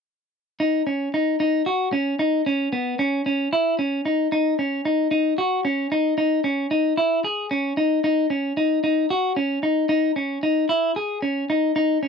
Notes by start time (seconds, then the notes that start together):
0.60 D#4
0.87 C#4
1.14 D#4
1.40 D#4
1.66 F#4
1.93 C#4
2.19 D#4
2.46 C#4
2.73 B3
2.99 C#4
3.26 C#4
3.53 E4
3.79 C#4
4.06 D#4
4.32 D#4
4.59 C#4
4.85 D#4
5.11 D#4
5.38 F#4
5.65 C#4
5.92 D#4
6.18 D#4
6.44 C#4
6.71 D#4
6.97 E4
7.24 G#4
7.51 C#4
7.77 D#4
8.04 D#4
8.30 C#4
8.57 D#4
8.84 D#4
9.10 F#4
9.36 C#4
9.63 D#4
9.89 D#4
10.16 C#4
10.43 D#4
10.69 E4
10.96 G#4
11.22 C#4
11.50 D#4
11.76 D#4
12.03 C#4